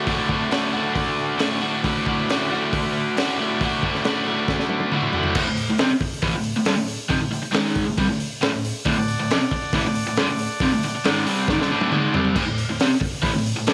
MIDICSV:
0, 0, Header, 1, 5, 480
1, 0, Start_track
1, 0, Tempo, 440529
1, 92, Time_signature, 4, 2, 24, 8
1, 5372, Tempo, 436999
1, 15043, End_track
2, 0, Start_track
2, 0, Title_t, "Transistor combo organ"
2, 0, Program_c, 0, 18
2, 0, Note_on_c, 0, 74, 73
2, 0, Note_on_c, 0, 78, 69
2, 0, Note_on_c, 0, 81, 87
2, 1976, Note_off_c, 0, 74, 0
2, 1983, Note_off_c, 0, 78, 0
2, 1989, Note_off_c, 0, 81, 0
2, 2027, Note_on_c, 0, 74, 74
2, 2048, Note_on_c, 0, 78, 68
2, 2057, Note_on_c, 0, 83, 90
2, 5813, Note_off_c, 0, 74, 0
2, 5824, Note_off_c, 0, 78, 0
2, 5829, Note_off_c, 0, 83, 0
2, 9685, Note_on_c, 0, 74, 85
2, 9698, Note_on_c, 0, 78, 77
2, 9720, Note_on_c, 0, 81, 93
2, 13481, Note_off_c, 0, 74, 0
2, 13487, Note_off_c, 0, 78, 0
2, 13498, Note_off_c, 0, 81, 0
2, 15043, End_track
3, 0, Start_track
3, 0, Title_t, "Overdriven electric guitar"
3, 0, Program_c, 1, 29
3, 73, Note_on_c, 1, 38, 93
3, 77, Note_on_c, 1, 45, 101
3, 83, Note_on_c, 1, 50, 96
3, 91, Note_on_c, 1, 57, 100
3, 100, Note_on_c, 1, 66, 101
3, 307, Note_off_c, 1, 66, 0
3, 311, Note_on_c, 1, 66, 72
3, 325, Note_off_c, 1, 57, 0
3, 330, Note_on_c, 1, 57, 66
3, 338, Note_off_c, 1, 50, 0
3, 342, Note_on_c, 1, 50, 61
3, 541, Note_off_c, 1, 45, 0
3, 554, Note_on_c, 1, 45, 77
3, 565, Note_off_c, 1, 50, 0
3, 569, Note_on_c, 1, 50, 70
3, 571, Note_off_c, 1, 57, 0
3, 575, Note_on_c, 1, 57, 83
3, 581, Note_off_c, 1, 66, 0
3, 585, Note_on_c, 1, 66, 73
3, 793, Note_off_c, 1, 66, 0
3, 797, Note_on_c, 1, 66, 71
3, 810, Note_off_c, 1, 57, 0
3, 814, Note_on_c, 1, 57, 65
3, 830, Note_off_c, 1, 50, 0
3, 834, Note_on_c, 1, 50, 57
3, 1044, Note_off_c, 1, 45, 0
3, 1503, Note_off_c, 1, 38, 0
3, 1507, Note_on_c, 1, 38, 76
3, 1517, Note_on_c, 1, 45, 95
3, 1525, Note_off_c, 1, 50, 0
3, 1528, Note_off_c, 1, 57, 0
3, 1529, Note_on_c, 1, 50, 92
3, 1531, Note_off_c, 1, 66, 0
3, 1532, Note_on_c, 1, 57, 93
3, 1536, Note_on_c, 1, 66, 93
3, 1756, Note_off_c, 1, 66, 0
3, 1760, Note_on_c, 1, 66, 72
3, 1775, Note_off_c, 1, 57, 0
3, 1779, Note_on_c, 1, 57, 64
3, 1783, Note_off_c, 1, 50, 0
3, 1787, Note_on_c, 1, 50, 57
3, 1996, Note_off_c, 1, 38, 0
3, 1998, Note_off_c, 1, 45, 0
3, 2001, Note_on_c, 1, 38, 95
3, 2011, Note_on_c, 1, 45, 95
3, 2018, Note_off_c, 1, 50, 0
3, 2022, Note_off_c, 1, 57, 0
3, 2022, Note_on_c, 1, 50, 98
3, 2027, Note_on_c, 1, 57, 108
3, 2030, Note_off_c, 1, 66, 0
3, 2034, Note_on_c, 1, 66, 109
3, 2252, Note_off_c, 1, 66, 0
3, 2256, Note_on_c, 1, 66, 75
3, 2262, Note_off_c, 1, 57, 0
3, 2266, Note_on_c, 1, 57, 59
3, 2278, Note_off_c, 1, 50, 0
3, 2282, Note_on_c, 1, 50, 56
3, 2490, Note_off_c, 1, 45, 0
3, 2503, Note_on_c, 1, 45, 75
3, 2506, Note_off_c, 1, 50, 0
3, 2511, Note_on_c, 1, 50, 74
3, 2517, Note_off_c, 1, 57, 0
3, 2521, Note_on_c, 1, 57, 75
3, 2528, Note_off_c, 1, 66, 0
3, 2532, Note_on_c, 1, 66, 81
3, 2729, Note_off_c, 1, 66, 0
3, 2733, Note_on_c, 1, 66, 71
3, 2746, Note_off_c, 1, 57, 0
3, 2750, Note_on_c, 1, 57, 66
3, 2754, Note_off_c, 1, 50, 0
3, 2758, Note_on_c, 1, 50, 56
3, 2980, Note_off_c, 1, 45, 0
3, 3449, Note_off_c, 1, 38, 0
3, 3453, Note_on_c, 1, 38, 91
3, 3470, Note_on_c, 1, 45, 87
3, 3473, Note_off_c, 1, 50, 0
3, 3473, Note_off_c, 1, 57, 0
3, 3477, Note_on_c, 1, 50, 82
3, 3477, Note_on_c, 1, 57, 98
3, 3481, Note_off_c, 1, 66, 0
3, 3485, Note_on_c, 1, 66, 107
3, 3692, Note_off_c, 1, 66, 0
3, 3696, Note_on_c, 1, 66, 70
3, 3709, Note_off_c, 1, 57, 0
3, 3713, Note_on_c, 1, 57, 66
3, 3728, Note_off_c, 1, 50, 0
3, 3733, Note_on_c, 1, 50, 53
3, 3937, Note_off_c, 1, 45, 0
3, 3939, Note_off_c, 1, 38, 0
3, 3943, Note_off_c, 1, 50, 0
3, 3943, Note_on_c, 1, 38, 83
3, 3950, Note_on_c, 1, 45, 84
3, 3952, Note_off_c, 1, 57, 0
3, 3956, Note_on_c, 1, 50, 104
3, 3961, Note_off_c, 1, 66, 0
3, 3965, Note_on_c, 1, 57, 99
3, 3975, Note_on_c, 1, 66, 100
3, 4167, Note_off_c, 1, 66, 0
3, 4180, Note_on_c, 1, 66, 74
3, 4184, Note_off_c, 1, 57, 0
3, 4197, Note_on_c, 1, 57, 60
3, 4199, Note_off_c, 1, 50, 0
3, 4212, Note_on_c, 1, 50, 54
3, 4403, Note_off_c, 1, 45, 0
3, 4411, Note_off_c, 1, 50, 0
3, 4416, Note_on_c, 1, 45, 71
3, 4418, Note_off_c, 1, 38, 0
3, 4424, Note_on_c, 1, 50, 69
3, 4427, Note_off_c, 1, 57, 0
3, 4435, Note_off_c, 1, 66, 0
3, 4441, Note_on_c, 1, 57, 77
3, 4448, Note_on_c, 1, 66, 76
3, 4634, Note_off_c, 1, 66, 0
3, 4647, Note_on_c, 1, 66, 75
3, 4650, Note_off_c, 1, 57, 0
3, 4663, Note_on_c, 1, 57, 64
3, 4666, Note_off_c, 1, 50, 0
3, 4679, Note_on_c, 1, 50, 65
3, 4894, Note_off_c, 1, 45, 0
3, 5360, Note_off_c, 1, 50, 0
3, 5360, Note_on_c, 1, 38, 91
3, 5367, Note_off_c, 1, 57, 0
3, 5368, Note_on_c, 1, 45, 85
3, 5373, Note_on_c, 1, 50, 90
3, 5375, Note_off_c, 1, 66, 0
3, 5380, Note_on_c, 1, 57, 87
3, 5388, Note_on_c, 1, 66, 97
3, 5581, Note_off_c, 1, 66, 0
3, 5594, Note_on_c, 1, 66, 67
3, 5602, Note_off_c, 1, 57, 0
3, 5612, Note_off_c, 1, 50, 0
3, 5615, Note_on_c, 1, 57, 65
3, 5625, Note_on_c, 1, 50, 53
3, 5829, Note_off_c, 1, 66, 0
3, 5832, Note_off_c, 1, 38, 0
3, 5836, Note_off_c, 1, 45, 0
3, 5839, Note_off_c, 1, 57, 0
3, 5844, Note_off_c, 1, 50, 0
3, 5845, Note_on_c, 1, 38, 93
3, 5852, Note_on_c, 1, 45, 107
3, 5961, Note_off_c, 1, 38, 0
3, 5964, Note_off_c, 1, 45, 0
3, 5977, Note_on_c, 1, 38, 57
3, 5982, Note_on_c, 1, 45, 69
3, 6167, Note_off_c, 1, 38, 0
3, 6169, Note_off_c, 1, 45, 0
3, 6212, Note_on_c, 1, 38, 63
3, 6213, Note_on_c, 1, 45, 72
3, 6311, Note_off_c, 1, 38, 0
3, 6316, Note_on_c, 1, 41, 92
3, 6327, Note_off_c, 1, 45, 0
3, 6331, Note_on_c, 1, 48, 113
3, 6436, Note_off_c, 1, 41, 0
3, 6444, Note_off_c, 1, 48, 0
3, 6796, Note_on_c, 1, 45, 105
3, 6807, Note_on_c, 1, 52, 109
3, 6917, Note_off_c, 1, 45, 0
3, 6922, Note_off_c, 1, 52, 0
3, 6938, Note_on_c, 1, 38, 77
3, 6945, Note_on_c, 1, 45, 83
3, 7126, Note_off_c, 1, 38, 0
3, 7130, Note_off_c, 1, 45, 0
3, 7168, Note_on_c, 1, 38, 69
3, 7178, Note_on_c, 1, 45, 76
3, 7276, Note_off_c, 1, 38, 0
3, 7280, Note_on_c, 1, 43, 95
3, 7286, Note_off_c, 1, 45, 0
3, 7290, Note_on_c, 1, 50, 96
3, 7388, Note_off_c, 1, 43, 0
3, 7392, Note_on_c, 1, 38, 63
3, 7393, Note_off_c, 1, 50, 0
3, 7397, Note_on_c, 1, 45, 79
3, 7593, Note_off_c, 1, 38, 0
3, 7596, Note_off_c, 1, 45, 0
3, 7747, Note_on_c, 1, 41, 106
3, 7760, Note_on_c, 1, 48, 118
3, 7869, Note_off_c, 1, 41, 0
3, 7872, Note_off_c, 1, 48, 0
3, 7874, Note_on_c, 1, 38, 63
3, 7876, Note_on_c, 1, 45, 70
3, 7977, Note_off_c, 1, 45, 0
3, 7983, Note_off_c, 1, 38, 0
3, 7991, Note_on_c, 1, 45, 74
3, 7996, Note_on_c, 1, 38, 76
3, 8105, Note_off_c, 1, 38, 0
3, 8120, Note_off_c, 1, 45, 0
3, 8218, Note_on_c, 1, 44, 94
3, 8228, Note_on_c, 1, 51, 97
3, 8233, Note_on_c, 1, 56, 109
3, 8585, Note_off_c, 1, 44, 0
3, 8590, Note_off_c, 1, 51, 0
3, 8593, Note_off_c, 1, 56, 0
3, 8601, Note_on_c, 1, 38, 68
3, 8603, Note_on_c, 1, 45, 71
3, 8718, Note_off_c, 1, 38, 0
3, 8722, Note_on_c, 1, 48, 100
3, 8725, Note_off_c, 1, 45, 0
3, 8732, Note_on_c, 1, 55, 125
3, 8837, Note_off_c, 1, 48, 0
3, 8840, Note_off_c, 1, 55, 0
3, 8844, Note_on_c, 1, 45, 71
3, 8847, Note_on_c, 1, 38, 75
3, 9037, Note_off_c, 1, 45, 0
3, 9039, Note_off_c, 1, 38, 0
3, 9199, Note_on_c, 1, 38, 90
3, 9210, Note_on_c, 1, 45, 92
3, 9302, Note_off_c, 1, 38, 0
3, 9306, Note_off_c, 1, 45, 0
3, 9315, Note_on_c, 1, 38, 65
3, 9319, Note_on_c, 1, 45, 74
3, 9512, Note_off_c, 1, 38, 0
3, 9514, Note_off_c, 1, 45, 0
3, 9680, Note_on_c, 1, 38, 103
3, 9694, Note_on_c, 1, 45, 108
3, 9795, Note_off_c, 1, 38, 0
3, 9802, Note_off_c, 1, 45, 0
3, 9813, Note_on_c, 1, 38, 67
3, 9819, Note_on_c, 1, 45, 73
3, 10001, Note_off_c, 1, 38, 0
3, 10004, Note_off_c, 1, 45, 0
3, 10057, Note_on_c, 1, 38, 64
3, 10061, Note_on_c, 1, 45, 74
3, 10170, Note_off_c, 1, 38, 0
3, 10173, Note_off_c, 1, 45, 0
3, 10182, Note_on_c, 1, 41, 101
3, 10193, Note_on_c, 1, 48, 99
3, 10286, Note_off_c, 1, 41, 0
3, 10291, Note_off_c, 1, 48, 0
3, 10658, Note_on_c, 1, 45, 105
3, 10668, Note_on_c, 1, 52, 104
3, 10764, Note_off_c, 1, 45, 0
3, 10768, Note_off_c, 1, 52, 0
3, 10792, Note_on_c, 1, 45, 78
3, 10796, Note_on_c, 1, 38, 74
3, 10970, Note_off_c, 1, 45, 0
3, 10971, Note_off_c, 1, 38, 0
3, 11015, Note_on_c, 1, 38, 65
3, 11021, Note_on_c, 1, 45, 78
3, 11129, Note_off_c, 1, 38, 0
3, 11132, Note_off_c, 1, 45, 0
3, 11144, Note_on_c, 1, 43, 94
3, 11160, Note_on_c, 1, 50, 104
3, 11247, Note_off_c, 1, 43, 0
3, 11255, Note_off_c, 1, 50, 0
3, 11275, Note_on_c, 1, 38, 63
3, 11279, Note_on_c, 1, 45, 75
3, 11451, Note_off_c, 1, 38, 0
3, 11453, Note_off_c, 1, 45, 0
3, 11623, Note_on_c, 1, 41, 105
3, 11631, Note_on_c, 1, 48, 111
3, 11726, Note_off_c, 1, 41, 0
3, 11730, Note_off_c, 1, 48, 0
3, 11750, Note_on_c, 1, 38, 65
3, 11754, Note_on_c, 1, 45, 69
3, 11856, Note_off_c, 1, 38, 0
3, 11858, Note_off_c, 1, 45, 0
3, 11869, Note_on_c, 1, 38, 65
3, 11875, Note_on_c, 1, 45, 70
3, 11976, Note_off_c, 1, 38, 0
3, 11979, Note_off_c, 1, 45, 0
3, 12099, Note_on_c, 1, 44, 99
3, 12109, Note_on_c, 1, 51, 103
3, 12117, Note_on_c, 1, 56, 110
3, 12324, Note_off_c, 1, 44, 0
3, 12329, Note_off_c, 1, 51, 0
3, 12333, Note_off_c, 1, 56, 0
3, 12345, Note_on_c, 1, 48, 96
3, 12353, Note_on_c, 1, 55, 98
3, 12357, Note_on_c, 1, 60, 108
3, 12567, Note_off_c, 1, 48, 0
3, 12571, Note_off_c, 1, 55, 0
3, 12573, Note_off_c, 1, 60, 0
3, 12573, Note_on_c, 1, 44, 101
3, 12588, Note_on_c, 1, 51, 108
3, 12681, Note_off_c, 1, 44, 0
3, 12689, Note_off_c, 1, 51, 0
3, 12692, Note_on_c, 1, 43, 89
3, 12700, Note_on_c, 1, 50, 115
3, 12801, Note_off_c, 1, 43, 0
3, 12805, Note_off_c, 1, 50, 0
3, 12816, Note_on_c, 1, 38, 94
3, 12824, Note_on_c, 1, 45, 95
3, 12828, Note_on_c, 1, 50, 105
3, 13043, Note_off_c, 1, 38, 0
3, 13047, Note_off_c, 1, 45, 0
3, 13049, Note_off_c, 1, 50, 0
3, 13052, Note_on_c, 1, 44, 100
3, 13060, Note_on_c, 1, 51, 102
3, 13064, Note_on_c, 1, 56, 103
3, 13281, Note_off_c, 1, 44, 0
3, 13285, Note_off_c, 1, 51, 0
3, 13287, Note_off_c, 1, 56, 0
3, 13291, Note_on_c, 1, 48, 92
3, 13297, Note_on_c, 1, 55, 106
3, 13305, Note_on_c, 1, 60, 99
3, 13521, Note_off_c, 1, 48, 0
3, 13524, Note_off_c, 1, 55, 0
3, 13528, Note_off_c, 1, 60, 0
3, 13533, Note_on_c, 1, 38, 102
3, 13544, Note_on_c, 1, 45, 115
3, 13637, Note_off_c, 1, 38, 0
3, 13639, Note_off_c, 1, 45, 0
3, 13650, Note_on_c, 1, 38, 63
3, 13652, Note_on_c, 1, 45, 71
3, 13840, Note_off_c, 1, 38, 0
3, 13841, Note_off_c, 1, 45, 0
3, 13896, Note_on_c, 1, 38, 67
3, 13898, Note_on_c, 1, 45, 68
3, 14011, Note_off_c, 1, 38, 0
3, 14012, Note_off_c, 1, 45, 0
3, 14022, Note_on_c, 1, 41, 93
3, 14024, Note_on_c, 1, 48, 99
3, 14114, Note_off_c, 1, 41, 0
3, 14128, Note_off_c, 1, 48, 0
3, 14478, Note_on_c, 1, 45, 99
3, 14491, Note_on_c, 1, 52, 110
3, 14593, Note_off_c, 1, 45, 0
3, 14601, Note_off_c, 1, 52, 0
3, 14603, Note_on_c, 1, 38, 65
3, 14606, Note_on_c, 1, 45, 78
3, 14797, Note_off_c, 1, 38, 0
3, 14799, Note_off_c, 1, 45, 0
3, 14853, Note_on_c, 1, 38, 66
3, 14860, Note_on_c, 1, 45, 81
3, 14971, Note_off_c, 1, 38, 0
3, 14972, Note_off_c, 1, 45, 0
3, 14976, Note_on_c, 1, 43, 93
3, 14976, Note_on_c, 1, 50, 96
3, 15043, Note_off_c, 1, 43, 0
3, 15043, Note_off_c, 1, 50, 0
3, 15043, End_track
4, 0, Start_track
4, 0, Title_t, "Muted overdriven electric guitar strokes"
4, 6450, Note_on_c, 9, 29, 60
4, 6560, Note_off_c, 9, 29, 0
4, 6571, Note_on_c, 9, 29, 57
4, 6681, Note_off_c, 9, 29, 0
4, 8118, Note_on_c, 9, 29, 59
4, 8228, Note_off_c, 9, 29, 0
4, 10302, Note_on_c, 9, 29, 65
4, 10412, Note_off_c, 9, 29, 0
4, 10422, Note_on_c, 9, 29, 64
4, 10531, Note_off_c, 9, 29, 0
4, 11993, Note_on_c, 9, 29, 60
4, 12103, Note_off_c, 9, 29, 0
4, 14118, Note_on_c, 9, 29, 62
4, 14228, Note_off_c, 9, 29, 0
4, 14247, Note_on_c, 9, 29, 58
4, 14356, Note_off_c, 9, 29, 0
4, 15043, End_track
5, 0, Start_track
5, 0, Title_t, "Drums"
5, 73, Note_on_c, 9, 46, 51
5, 76, Note_on_c, 9, 36, 112
5, 182, Note_off_c, 9, 46, 0
5, 185, Note_off_c, 9, 36, 0
5, 318, Note_on_c, 9, 36, 79
5, 427, Note_off_c, 9, 36, 0
5, 558, Note_on_c, 9, 46, 51
5, 571, Note_on_c, 9, 38, 106
5, 667, Note_off_c, 9, 46, 0
5, 680, Note_off_c, 9, 38, 0
5, 1041, Note_on_c, 9, 36, 107
5, 1044, Note_on_c, 9, 46, 52
5, 1150, Note_off_c, 9, 36, 0
5, 1153, Note_off_c, 9, 46, 0
5, 1516, Note_on_c, 9, 46, 59
5, 1529, Note_on_c, 9, 38, 115
5, 1625, Note_off_c, 9, 46, 0
5, 1638, Note_off_c, 9, 38, 0
5, 2004, Note_on_c, 9, 46, 57
5, 2007, Note_on_c, 9, 36, 107
5, 2113, Note_off_c, 9, 46, 0
5, 2116, Note_off_c, 9, 36, 0
5, 2250, Note_on_c, 9, 36, 80
5, 2359, Note_off_c, 9, 36, 0
5, 2499, Note_on_c, 9, 46, 52
5, 2512, Note_on_c, 9, 38, 108
5, 2608, Note_off_c, 9, 46, 0
5, 2621, Note_off_c, 9, 38, 0
5, 2974, Note_on_c, 9, 36, 110
5, 2979, Note_on_c, 9, 46, 58
5, 3083, Note_off_c, 9, 36, 0
5, 3088, Note_off_c, 9, 46, 0
5, 3455, Note_on_c, 9, 46, 59
5, 3468, Note_on_c, 9, 38, 104
5, 3564, Note_off_c, 9, 46, 0
5, 3577, Note_off_c, 9, 38, 0
5, 3932, Note_on_c, 9, 36, 109
5, 3932, Note_on_c, 9, 46, 52
5, 4041, Note_off_c, 9, 36, 0
5, 4041, Note_off_c, 9, 46, 0
5, 4172, Note_on_c, 9, 36, 83
5, 4281, Note_off_c, 9, 36, 0
5, 4303, Note_on_c, 9, 38, 33
5, 4403, Note_on_c, 9, 46, 51
5, 4412, Note_off_c, 9, 38, 0
5, 4416, Note_on_c, 9, 38, 110
5, 4512, Note_off_c, 9, 46, 0
5, 4525, Note_off_c, 9, 38, 0
5, 4885, Note_on_c, 9, 36, 107
5, 4888, Note_on_c, 9, 38, 64
5, 4994, Note_off_c, 9, 36, 0
5, 4997, Note_off_c, 9, 38, 0
5, 5007, Note_on_c, 9, 38, 55
5, 5113, Note_on_c, 9, 48, 70
5, 5116, Note_off_c, 9, 38, 0
5, 5222, Note_off_c, 9, 48, 0
5, 5232, Note_on_c, 9, 48, 64
5, 5341, Note_off_c, 9, 48, 0
5, 5358, Note_on_c, 9, 47, 85
5, 5468, Note_off_c, 9, 47, 0
5, 5474, Note_on_c, 9, 45, 69
5, 5584, Note_off_c, 9, 45, 0
5, 5593, Note_on_c, 9, 43, 96
5, 5702, Note_off_c, 9, 43, 0
5, 5708, Note_on_c, 9, 43, 86
5, 5817, Note_off_c, 9, 43, 0
5, 5832, Note_on_c, 9, 49, 127
5, 5839, Note_on_c, 9, 36, 117
5, 5942, Note_off_c, 9, 49, 0
5, 5949, Note_off_c, 9, 36, 0
5, 6072, Note_on_c, 9, 46, 62
5, 6182, Note_off_c, 9, 46, 0
5, 6307, Note_on_c, 9, 46, 91
5, 6320, Note_on_c, 9, 38, 119
5, 6416, Note_off_c, 9, 46, 0
5, 6430, Note_off_c, 9, 38, 0
5, 6550, Note_on_c, 9, 46, 77
5, 6555, Note_on_c, 9, 36, 94
5, 6660, Note_off_c, 9, 46, 0
5, 6665, Note_off_c, 9, 36, 0
5, 6786, Note_on_c, 9, 46, 91
5, 6796, Note_on_c, 9, 36, 113
5, 6896, Note_off_c, 9, 46, 0
5, 6906, Note_off_c, 9, 36, 0
5, 7023, Note_on_c, 9, 46, 62
5, 7133, Note_off_c, 9, 46, 0
5, 7262, Note_on_c, 9, 46, 93
5, 7275, Note_on_c, 9, 38, 111
5, 7372, Note_off_c, 9, 46, 0
5, 7385, Note_off_c, 9, 38, 0
5, 7511, Note_on_c, 9, 46, 60
5, 7621, Note_off_c, 9, 46, 0
5, 7754, Note_on_c, 9, 46, 85
5, 7758, Note_on_c, 9, 36, 114
5, 7864, Note_off_c, 9, 46, 0
5, 7868, Note_off_c, 9, 36, 0
5, 8001, Note_on_c, 9, 46, 59
5, 8110, Note_off_c, 9, 46, 0
5, 8232, Note_on_c, 9, 46, 76
5, 8245, Note_on_c, 9, 38, 120
5, 8342, Note_off_c, 9, 46, 0
5, 8355, Note_off_c, 9, 38, 0
5, 8472, Note_on_c, 9, 46, 64
5, 8481, Note_on_c, 9, 36, 86
5, 8581, Note_off_c, 9, 46, 0
5, 8591, Note_off_c, 9, 36, 0
5, 8716, Note_on_c, 9, 46, 85
5, 8722, Note_on_c, 9, 36, 126
5, 8825, Note_off_c, 9, 46, 0
5, 8832, Note_off_c, 9, 36, 0
5, 8866, Note_on_c, 9, 38, 33
5, 8962, Note_on_c, 9, 46, 66
5, 8976, Note_off_c, 9, 38, 0
5, 9071, Note_off_c, 9, 46, 0
5, 9202, Note_on_c, 9, 46, 86
5, 9215, Note_on_c, 9, 38, 123
5, 9312, Note_off_c, 9, 46, 0
5, 9325, Note_off_c, 9, 38, 0
5, 9452, Note_on_c, 9, 46, 69
5, 9561, Note_off_c, 9, 46, 0
5, 9681, Note_on_c, 9, 46, 92
5, 9686, Note_on_c, 9, 36, 118
5, 9790, Note_off_c, 9, 46, 0
5, 9796, Note_off_c, 9, 36, 0
5, 9931, Note_on_c, 9, 46, 63
5, 10041, Note_off_c, 9, 46, 0
5, 10175, Note_on_c, 9, 46, 83
5, 10188, Note_on_c, 9, 38, 113
5, 10285, Note_off_c, 9, 46, 0
5, 10298, Note_off_c, 9, 38, 0
5, 10406, Note_on_c, 9, 46, 75
5, 10407, Note_on_c, 9, 36, 83
5, 10516, Note_off_c, 9, 46, 0
5, 10517, Note_off_c, 9, 36, 0
5, 10640, Note_on_c, 9, 46, 92
5, 10644, Note_on_c, 9, 36, 116
5, 10750, Note_off_c, 9, 46, 0
5, 10754, Note_off_c, 9, 36, 0
5, 10775, Note_on_c, 9, 38, 32
5, 10885, Note_off_c, 9, 38, 0
5, 10886, Note_on_c, 9, 46, 68
5, 10995, Note_off_c, 9, 46, 0
5, 11120, Note_on_c, 9, 46, 92
5, 11133, Note_on_c, 9, 38, 120
5, 11230, Note_off_c, 9, 46, 0
5, 11243, Note_off_c, 9, 38, 0
5, 11364, Note_on_c, 9, 46, 64
5, 11474, Note_off_c, 9, 46, 0
5, 11601, Note_on_c, 9, 46, 88
5, 11603, Note_on_c, 9, 36, 116
5, 11711, Note_off_c, 9, 46, 0
5, 11713, Note_off_c, 9, 36, 0
5, 11850, Note_on_c, 9, 46, 60
5, 11960, Note_off_c, 9, 46, 0
5, 12087, Note_on_c, 9, 46, 81
5, 12100, Note_on_c, 9, 38, 107
5, 12197, Note_off_c, 9, 46, 0
5, 12210, Note_off_c, 9, 38, 0
5, 12331, Note_on_c, 9, 46, 68
5, 12441, Note_off_c, 9, 46, 0
5, 12568, Note_on_c, 9, 36, 123
5, 12579, Note_on_c, 9, 38, 71
5, 12678, Note_off_c, 9, 36, 0
5, 12688, Note_off_c, 9, 38, 0
5, 12714, Note_on_c, 9, 38, 60
5, 12824, Note_off_c, 9, 38, 0
5, 12931, Note_on_c, 9, 48, 74
5, 13041, Note_off_c, 9, 48, 0
5, 13048, Note_on_c, 9, 47, 98
5, 13158, Note_off_c, 9, 47, 0
5, 13292, Note_on_c, 9, 43, 103
5, 13402, Note_off_c, 9, 43, 0
5, 13412, Note_on_c, 9, 43, 87
5, 13522, Note_off_c, 9, 43, 0
5, 13530, Note_on_c, 9, 36, 120
5, 13531, Note_on_c, 9, 49, 118
5, 13639, Note_off_c, 9, 36, 0
5, 13641, Note_off_c, 9, 49, 0
5, 13772, Note_on_c, 9, 46, 68
5, 13882, Note_off_c, 9, 46, 0
5, 14011, Note_on_c, 9, 46, 90
5, 14024, Note_on_c, 9, 38, 111
5, 14121, Note_off_c, 9, 46, 0
5, 14134, Note_off_c, 9, 38, 0
5, 14248, Note_on_c, 9, 36, 95
5, 14249, Note_on_c, 9, 46, 75
5, 14358, Note_off_c, 9, 36, 0
5, 14359, Note_off_c, 9, 46, 0
5, 14490, Note_on_c, 9, 36, 120
5, 14496, Note_on_c, 9, 46, 95
5, 14599, Note_off_c, 9, 36, 0
5, 14606, Note_off_c, 9, 46, 0
5, 14636, Note_on_c, 9, 38, 32
5, 14741, Note_on_c, 9, 46, 64
5, 14746, Note_off_c, 9, 38, 0
5, 14851, Note_off_c, 9, 46, 0
5, 14969, Note_on_c, 9, 46, 96
5, 14982, Note_on_c, 9, 38, 116
5, 15043, Note_off_c, 9, 38, 0
5, 15043, Note_off_c, 9, 46, 0
5, 15043, End_track
0, 0, End_of_file